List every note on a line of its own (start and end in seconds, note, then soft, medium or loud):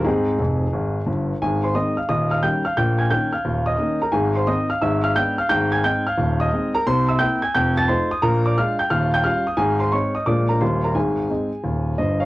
0.05 0.32 G#2 medium
0.05 0.34 C4 medium
0.05 1.03 D#4 medium
0.05 1.07 G#4 medium
0.39 0.65 F1 medium
0.39 0.65 F2 medium
0.73 0.99 G#1 medium
0.73 0.99 G#2 medium
1.06 1.32 G1 medium
1.06 1.32 G2 medium
1.42 1.70 G#1 medium
1.42 1.71 G#2 medium
1.42 1.63 G#4 medium
1.42 1.64 G#5 medium
1.64 1.75 C5 soft
1.64 1.75 C6 medium
1.75 1.94 D#3 soft
1.75 1.94 G#3 soft
1.75 1.94 C4 soft
1.75 1.97 D#5 medium
1.75 1.98 D#6 medium
1.97 2.09 F5 soft
1.97 2.09 F6 medium
2.09 2.38 D#1 medium
2.09 2.38 D#2 medium
2.09 2.30 D#5 medium
2.09 2.32 D#6 medium
2.31 2.43 F5 soft
2.31 2.43 F6 medium
2.43 2.62 D#3 soft
2.43 2.62 G3 soft
2.43 2.62 C#4 soft
2.43 2.64 G5 soft
2.43 2.66 G6 medium
2.65 2.77 F5 medium
2.65 2.77 F6 medium
2.77 3.07 A#1 medium
2.77 3.06 A#2 medium
2.77 2.99 G5 medium
2.77 3.00 G6 medium
2.98 3.11 G#5 medium
2.98 3.11 G#6 medium
3.10 3.29 D#3 soft
3.10 3.30 A#3 soft
3.10 3.30 C#4 soft
3.10 3.33 G5 medium
3.10 3.34 G6 medium
3.32 3.65 F5 soft
3.32 3.67 F6 medium
3.45 3.74 D#1 medium
3.45 3.74 D#2 medium
3.66 3.99 D#5 medium
3.66 4.01 D#6 medium
3.78 3.98 D#3 soft
3.78 3.98 A#3 soft
3.78 3.98 C#4 soft
4.02 4.13 A#4 soft
4.02 4.14 A#5 medium
4.12 4.42 G#1 medium
4.12 4.42 G#2 medium
4.12 4.34 G#4 medium
4.12 4.35 G#5 medium
4.35 4.47 C5 medium
4.35 4.47 C6 medium
4.47 4.66 D#3 soft
4.47 4.67 C4 soft
4.47 4.67 D#4 soft
4.47 4.69 D#5 medium
4.47 4.70 D#6 medium
4.70 4.81 F5 medium
4.70 4.82 F6 medium
4.82 5.11 G#1 medium
4.82 5.11 G#2 medium
4.82 5.03 E5 medium
4.82 5.04 E6 medium
5.04 5.15 F5 medium
5.04 5.16 F6 medium
5.16 5.35 G#3 soft
5.16 5.35 B3 soft
5.16 5.36 D4 soft
5.16 5.38 G5 medium
5.16 5.38 G6 medium
5.38 5.50 F5 medium
5.38 5.50 F6 medium
5.49 5.79 G#1 medium
5.49 5.79 G#2 medium
5.49 5.72 G5 medium
5.49 5.72 G6 loud
5.72 5.84 G#5 medium
5.72 5.84 G#6 medium
5.84 6.03 G#3 soft
5.84 6.03 C4 soft
5.84 6.03 D#4 medium
5.84 6.06 G5 medium
5.84 6.07 G6 medium
6.07 6.39 F5 medium
6.07 6.41 F6 medium
6.18 6.47 D#1 medium
6.18 6.47 D#2 medium
6.40 6.73 D#5 medium
6.40 6.75 D#6 medium
6.53 6.71 G#3 soft
6.53 6.72 C4 soft
6.53 6.72 D#4 soft
6.75 6.86 A#4 medium
6.75 6.86 A#5 medium
6.87 7.16 C2 medium
6.87 7.16 C3 medium
6.87 7.08 C5 medium
6.87 7.09 C6 loud
7.09 7.20 E5 medium
7.09 7.20 E6 medium
7.19 7.39 A#3 soft
7.19 7.39 C4 soft
7.19 7.40 E4 soft
7.19 7.41 G5 medium
7.19 7.42 G6 medium
7.42 7.54 G#5 medium
7.42 7.54 G#6 medium
7.54 7.83 F1 medium
7.54 7.84 F2 medium
7.54 7.76 G5 medium
7.54 7.77 G6 medium
7.77 7.89 A5 medium
7.77 7.89 A6 medium
7.88 8.07 A3 soft
7.88 8.08 D#4 soft
7.88 8.08 F4 soft
7.88 8.10 C5 medium
7.88 8.11 C6 medium
8.11 8.22 D#6 medium
8.22 8.51 A#1 medium
8.22 8.52 A#2 medium
8.22 8.44 A#4 medium
8.22 8.45 A#5 medium
8.45 8.57 D5 medium
8.45 8.57 D6 medium
8.57 8.76 G#3 soft
8.57 8.76 D4 soft
8.57 8.77 F4 soft
8.57 8.79 F5 medium
8.57 8.80 F6 medium
8.79 8.91 G5 medium
8.79 8.91 G6 medium
8.90 9.20 D#1 medium
8.90 9.20 D#2 medium
8.90 9.12 F5 medium
8.90 9.13 F6 medium
9.14 9.25 G5 medium
9.14 9.25 G6 medium
9.24 9.43 G3 soft
9.24 9.43 C#4 soft
9.24 9.44 F4 soft
9.24 9.46 F5 medium
9.24 9.47 F6 medium
9.47 9.59 D#6 medium
9.57 9.87 G#1 medium
9.57 9.87 G#2 medium
9.57 9.80 G#4 medium
9.57 9.81 G#5 medium
9.80 9.92 C5 medium
9.80 9.92 C6 medium
9.92 10.12 G#3 soft
9.92 10.12 C4 soft
9.92 10.12 D#4 soft
9.92 10.14 C#5 medium
9.92 10.15 C#6 medium
10.15 10.27 D#5 soft
10.15 10.27 D#6 medium
10.26 10.56 A#1 medium
10.26 10.56 A#2 medium
10.26 10.46 G#3 soft
10.26 10.47 A#3 soft
10.26 10.47 D4 soft
10.26 10.49 D5 medium
10.26 10.49 D6 medium
10.49 10.61 A#4 medium
10.49 10.61 A#5 medium
10.61 10.91 D#1 medium
10.61 10.91 D#2 medium
10.61 10.80 G3 soft
10.61 10.81 A#3 soft
10.61 10.81 D#4 soft
10.61 10.83 C5 medium
10.61 10.84 C6 medium
10.84 10.95 A#4 soft
10.84 10.96 A#5 medium
10.95 11.24 G#1 medium
10.95 11.24 G#2 medium
10.95 11.94 G#4 soft
10.95 11.97 G#5 medium
11.30 11.49 G#3 soft
11.30 11.49 C4 soft
11.30 11.49 D#4 soft
11.63 11.93 D#1 soft
11.63 11.92 D#2 medium
11.98 12.25 G1 medium
11.98 12.25 G2 soft
11.98 12.20 C5 soft
11.98 12.20 D#5 medium
12.20 12.25 C#5 soft
12.20 12.25 F5 medium